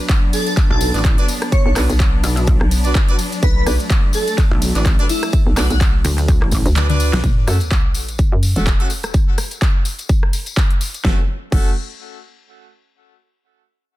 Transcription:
Already playing: F#3 B3 D4
0.09 kick, clap, closed hi-hat, ride, tambourine
0.33 A4, open hi-hat, ride, tambourine
0.47 closed hi-hat, tambourine
0.57 kick, clap, closed hi-hat, ride, tambourine
0.70 B1 A4
0.81 open hi-hat, ride, tambourine
0.94 A1 D4 F#4 B4 D5, closed hi-hat, tambourine
1.05 kick, clap, closed hi-hat, ride, tambourine
1.18 D4 F#4 B4 D5, closed hi-hat
1.28 open hi-hat, ride, tambourine
1.42 cross-stick, closed hi-hat, tambourine
1.52 C#5, kick, closed hi-hat, ride, tambourine
1.66 B1 C#5
1.76 B1 D4 F#4 B4 D5, cross-stick, clap, open hi-hat, ride, tambourine
1.89 B1, closed hi-hat, tambourine
2.00 kick, clap, closed hi-hat, ride, tambourine
2.23 B1, open hi-hat, ride, tambourine
2.37 closed hi-hat, tambourine
2.47 kick, closed hi-hat, ride, tambourine
2.61 B1, cross-stick
2.71 open hi-hat, ride, tambourine
2.84 D4 F#4 B4 D5, closed hi-hat, tambourine
2.95 kick, clap, closed hi-hat, ride, tambourine
3.09 D4 F#4 B4 D5, closed hi-hat
3.19 open hi-hat, ride, tambourine
3.32 closed hi-hat, tambourine
3.43 B1 A3 B4, kick, closed hi-hat, ride, tambourine
3.56 B4
3.66 B1 D4 F#4 B4 D5, cross-stick, open hi-hat, ride, tambourine
3.79 closed hi-hat, tambourine
3.90 kick, clap, closed hi-hat, ride, tambourine
4.13 A4, open hi-hat, ride, tambourine
4.28 closed hi-hat, tambourine
4.38 kick, clap, closed hi-hat, ride, tambourine
4.51 B1
4.62 open hi-hat, ride, tambourine
4.75 A1 D4 F#4 B4 D5, closed hi-hat, tambourine
4.86 kick, clap, closed hi-hat, ride, tambourine
4.99 D4 F#4 B4 D5, closed hi-hat
5.09 E4, open hi-hat, ride, tambourine
5.23 cross-stick, closed hi-hat, tambourine
5.32 kick, closed hi-hat, ride, tambourine
5.47 B1
5.56 B1 D4 F#4 B4 D5, cross-stick, clap, open hi-hat, ride, tambourine
5.70 B1 F#4, closed hi-hat, tambourine
5.80 kick, clap, closed hi-hat, ride, tambourine
6.04 D2, open hi-hat, ride, tambourine
6.18 closed hi-hat, tambourine
6.28 kick, closed hi-hat, ride, tambourine
6.42 A1, cross-stick
6.51 kick, open hi-hat, ride, tambourine
6.66 D2, closed hi-hat, tambourine
6.76 D4 F#4 B4 D5, clap, closed hi-hat, high tom, ride, tambourine
6.90 D4 F#4 B4 D5, closed hi-hat, high tom
7.00 open hi-hat, ride, tambourine
7.13 B1, snare, closed hi-hat, tambourine
7.24 F#1, kick, closed hi-hat, tambourine, sub drop
7.47 F#2 A3 C#4 F#4 A4, cross-stick, open hi-hat, tambourine
7.60 closed hi-hat, tambourine
7.71 kick, clap, closed hi-hat, tambourine
7.94 open hi-hat, tambourine
8.08 closed hi-hat, tambourine
8.18 kick, closed hi-hat, tambourine
8.32 F#2
8.43 open hi-hat, tambourine
8.56 E1 A3 C#4 F#4 A4, closed hi-hat, tambourine
8.67 kick, clap, closed hi-hat, tambourine
8.80 A3 C#4 F#4 A4, closed hi-hat
8.90 open hi-hat, tambourine
9.03 cross-stick, closed hi-hat, tambourine
9.14 kick, closed hi-hat, tambourine
9.38 cross-stick, open hi-hat, tambourine
9.51 closed hi-hat, tambourine
9.61 kick, clap, closed hi-hat, tambourine
9.85 open hi-hat, tambourine
9.99 closed hi-hat, tambourine
10.09 kick, closed hi-hat, tambourine
10.23 cross-stick
10.33 open hi-hat, tambourine
10.46 closed hi-hat, tambourine
10.57 kick, clap, closed hi-hat
10.71 closed hi-hat
10.81 open hi-hat, tambourine
10.94 closed hi-hat, tambourine
11.05 F#1 A3 C#4 F#4 A4, kick, snare
11.52 F#1 A3 C#4 F#4 A4, kick, crash

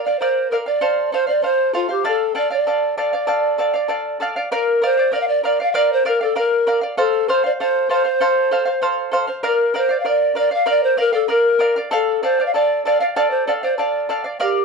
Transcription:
0.04 D5 F5
0.19 A#4 C5 D5 F5
0.50 A#4 D5 F5
0.66 D5 F5
0.81 A4 C5 F5
1.12 A4 C5 F5
1.27 C5 D5 F5
1.42 A4 C5 F5
1.73 F4 A4 C5 F5
1.89 G4 C5 F5
2.04 A4 D5 F5
2.35 A4 D5 F5
2.50 D5 F5
2.67 A4 D5 F5
2.98 A4 D5 F5
3.13 D5 F5
3.27 A4 D5 F5
3.58 A4 D5 F5
3.74 D5 F5
3.88 A4 D5 F5
4.20 A4 D5 F5
4.36 D5 F5
4.52 A#4 D5 F5
4.82 A#4 C5 D5 F5
4.97 D5 F5
5.12 A#4 D5 F5
5.20 F5
5.27 D5
5.43 A#4 D5 F5
5.60 D5 F5
5.72 A#4 D5 F5
5.92 C5
6.05 A#4 D5 F5
6.21 A4 D5 F5
6.36 A#4 D5 F5
6.67 A#4 D5 F5
6.81 D5 F5
6.97 A4 C5 F5
7.28 A4 C5 F5
7.44 C5 D5 F5
7.60 A4 C5 F5
7.89 A4 C5 F5
8.04 C5 F5
8.20 A4 C5 F5
8.51 A4 C5 F5
8.65 C5 F5
8.82 A4 C5 F5
9.12 A4 C5 F5
9.27 C5 F5
9.43 A#4 D5 F5
9.74 A#4 C5 D5 F5
9.89 D5 F5
9.99 F5
10.05 A#4 D5 F5
10.35 A#4 D5 F5
10.51 D5 F5
10.66 A#4 D5 F5
10.83 C5
10.97 A#4 D5 F5
11.13 A4 D5 F5
11.28 A#4 D5 F5
11.59 A#4 D5 F5
11.76 D5 F5
11.91 A4 D5 F5
12.23 A4 C5 D5 F5
12.40 D5 F5
12.46 F5
12.54 A4 D5 F5
12.85 A4 D5 F5
13.00 D5 F5
13.16 A4 D5 F5
13.30 C5
13.47 A4 D5 F5
13.62 C5 D5 F5
13.77 A4 D5 F5
14.09 A4 D5 F5
14.24 D5 F5
14.40 G4 A#4 D5 F5

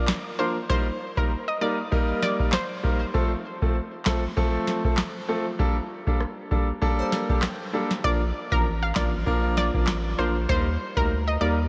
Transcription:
0.08 snare, clap
0.39 F3 A#3 D4 A#4 C5
0.69 G3 A#3 D#4 A#4 C5, kick
1.17 G3 A#3 D#4 A#4, kick
1.48 D#5
1.61 G3 A#3 D#4 A#4 D5
1.92 G3 A#3 D#4 A#4, kick
2.23 D5, snare
2.39 G3 A#3 D#4 A#4, kick
2.52 C5, snare, clap
2.83 G3 A#3 D#4 A#4, kick
3.14 F3 A3 C4 A4, kick
3.62 F3 A3 C4 A4, kick
4.05 F3 A3 C4 A4, kick, snare, clap
4.37 F3 A3 C4 A4, kick
4.67 snare
4.84 F3 A3 C4 A4, kick
4.97 snare, clap
5.28 F3 A3 C4 A4
5.59 G3 A#3 D4 A4, kick
6.07 G3 A#3 D4 A4, kick
6.21 cross-stick
6.51 G3 A#3 D4 A4, kick
6.82 G3 A#3 D4 A4 D5, kick
6.99 C5
7.12 A#4, snare
7.29 G3 A#3 D4 G4 A4, kick
7.42 cross-stick, snare, clap
7.73 G3 A#3 D4 A4
7.91 snare
8.04 A#1 F3 A#3 D4 A#4 D5, kick
8.52 A1 F3 A#3 D4 A#4, kick
8.83 F5
8.95 A1 F3 A#3 D4 A#4 D5, kick, snare, clap
9.26 A#1 F3 A#3 D4 A#4, kick
9.57 D5, snare
9.74 A1 F3 A#3 D4 A#4, kick
9.87 snare, clap
10.18 A#1 F3 A#3 D4 A#4 C5
10.49 D#2 G3 A#3 D#4 A#4 C5, kick
10.96 D2 G3 A#3 D#4 A#4, kick
11.28 D#5
11.41 D#2 G3 A#3 D#4 A#4 D5

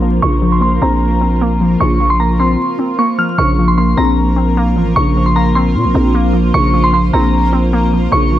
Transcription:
Already playing: A#1 A#3 C4 F4 A#4 C5 C6
0.02 F3
0.22 A#1 C#3 F4 C#6
0.42 F3
0.52 C6
0.61 A#3 C6
0.82 A#1 C4 A#5
1.21 C4
1.42 A#3
1.61 F3
1.80 A#1 C#3 C#6
2.00 F3
2.10 C6
2.20 A#3 A#5
2.39 C4 C6
2.79 C4
2.99 A#3 C#6
3.18 F3 F6
3.38 A#1 C#3 A#3 F4 A#4 C5 C#6
3.59 F3
3.68 C6
3.78 A#3 C6
3.97 A#1 C4 A#5
4.36 C4
4.57 A#3
4.76 A1 F3
4.96 A#1 C#3 C#6
5.16 F3
5.26 C6
5.36 A#3 A#5
5.55 C4 C6
5.75 A#2
5.85 A#1
5.95 A#1 C4
6.15 A#3
6.33 F3
6.54 A#1 C#3 A#4 C#6
6.74 F3
6.84 C6
6.93 A#3 C6
7.13 A#1 C4 A#5
7.53 C4
7.73 A#3
7.93 F3
8.12 A#1 C#3 C#6
8.32 F3

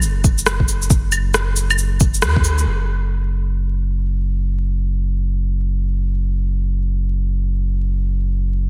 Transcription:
0.02 F#1, shaker
0.24 kick, cabasa
0.38 shaker
0.46 cross-stick, shaker
0.60 kick
0.68 cabasa
0.82 shaker
0.90 kick, shaker
1.12 cabasa, claves
1.34 cross-stick, shaker
1.56 cabasa, shaker
1.70 claves, shaker
1.78 shaker
2.00 kick, cabasa
2.14 shaker
2.22 E2, cross-stick, shaker
2.36 kick
2.44 D2, cabasa
2.58 shaker
2.67 F#1

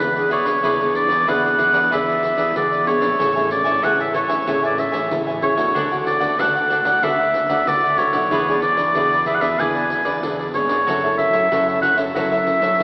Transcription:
Already playing: D4 G#4 B4 D5
0.00 E2 B2, pandeiro
0.16 B3 D4 G#4 B4 D5, pandeiro
0.30 E4 G#4 B4 C#5 D5, pandeiro
0.45 G#4 B4 D5, pandeiro
0.63 E2 E3 B3 D4 E4 G#4 B4 D5, pandeiro
0.79 B3 D4 G#4 B4 D5, pandeiro
0.94 D5, muted cavaquinho stroke, pandeiro
1.09 E2 G#4 B4 D5, pandeiro
1.27 E2 B2 B3 D4 E4 G#4 B4 D5 F#5, pandeiro
1.44 G#4 B4 D5, pandeiro
1.58 E4 G#4 B4 D5, pandeiro
1.73 E2 G#4 B4 D5, pandeiro
1.91 E2 E3 B3 D4 E4 G#4 B4 D5 E5, pandeiro
2.08 G#4 B4 D5, pandeiro
2.22 muted cavaquinho stroke, pandeiro
2.37 E2 G#4 B4 D5, pandeiro
2.56 E2 B2 B3 D4 G#4 D5, pandeiro
2.72 G#4 B4 D5, pandeiro
2.87 B3 D4 G#4 C#5, pandeiro
3.01 A#1 G#4 B4 D5, pandeiro
3.19 A1 A3 C#4 E4 G#4 A4 C#5 E5 G#5, pandeiro
3.35 C#4 E4 G#4 C#5 E5 G#5, pandeiro
3.49 D5, muted cavaquinho stroke, pandeiro
3.64 A1 C#5 E5 G#5, pandeiro
3.82 A1 E3 C#4 E4 G#4 A4 C#5 E5 F#5 G#5, pandeiro
3.99 C#5 E5 G#5, pandeiro
4.13 A4 C#5 E5 G#5, pandeiro
4.28 A1 C#5 E5 G#5, pandeiro
4.46 A1 A3 C#4 E4 G#4 A4 C#5 E5 G#5, pandeiro
4.63 C#5 D5 E5 G#5, pandeiro
4.77 E5, muted cavaquinho stroke, pandeiro
4.92 A1 C#5 E5 G#5, pandeiro
5.11 A1 E3 C#4 E4 G#4, pandeiro
5.27 C#5 E5 G#5, pandeiro
5.42 C#4 E4 G#4 C#5, pandeiro
5.57 E2 A3 D4 F#4 C#5 E5 G#5, pandeiro
5.75 D2 D3 D4 A4 D5 F#5, pandeiro
5.92 A3 D4 F#4 A4 D5 F#5, pandeiro
6.05 D5, muted cavaquinho stroke, pandeiro
6.20 D2 A4 D5 F#5, pandeiro
6.39 D2 A2 A3 D4 F#4 A4 D5 F#5, pandeiro
6.56 A4 D5 F#5, pandeiro
6.70 D4 A4 D5 F#5, pandeiro
6.85 D2 A4 D5 F#5, pandeiro
7.03 D2 D3 A3 D4 F#4 A4 D5 E5 F#5, pandeiro
7.19 A4 D5 F#5, pandeiro
7.34 muted cavaquinho stroke, pandeiro
7.49 D2 A4 D5 F#5, pandeiro
7.67 D2 A2 A3 D4 F#4 D5, pandeiro
7.84 A4 D5 F#5, pandeiro
7.98 A3 D4 F#4 C#5, pandeiro
8.13 B1 A4 D5 F#5, pandeiro
8.31 E2 E3 B3 D4 E4 G#4 B4 D5, pandeiro
8.48 B3 D4 G#4 B4 D5, pandeiro
8.62 D5, muted cavaquinho stroke, pandeiro
8.77 E2 G#4 B4 D5, pandeiro
8.95 E2 B2 B3 D4 E4 G#4 B4 D5, pandeiro
9.12 G#4 B4 D5, pandeiro
9.26 E4 G#4 B4 D5 E5, pandeiro
9.35 F#5
9.41 E2 G#4 B4 D5 E5, pandeiro
9.59 E2 E3 B3 D4 E4 G#4 B4 D5 G#5, pandeiro
9.75 G#4 B4 D5, pandeiro
9.90 muted cavaquinho stroke, pandeiro
10.05 E2 G#4 B4 D5, pandeiro
10.23 E2 B2 B3 D4 G#4, pandeiro
10.40 G#4 B4 D5, pandeiro
10.54 G#1 B3 D4 G#4 C#5, pandeiro
10.69 F#1 G#4 B4 D5, pandeiro
10.87 F#2 F#3 C#4 E4 F#4 A4 C#5 E5, pandeiro
11.04 C#4 E4 A4 C#5 E5, pandeiro
11.18 E5, muted cavaquinho stroke, pandeiro
11.33 F#2 A4 C#5 E5, pandeiro
11.52 F#2 C#3 C#4 E4 F#4 A4 C#5 E5, pandeiro
11.68 A4 C#5 E5, pandeiro
11.82 F#4 A4 C#5 E5 F#5, pandeiro
11.97 F#2 A4 C#5 E5, pandeiro
12.15 F#2 F#3 C#4 E4 F#4 A4 C#5 E5, pandeiro
12.32 A4 C#5 E5, pandeiro
12.46 muted cavaquinho stroke, pandeiro
12.61 F#2 A4 C#5 E5, pandeiro
12.80 F#2 C#3 C#4, pandeiro

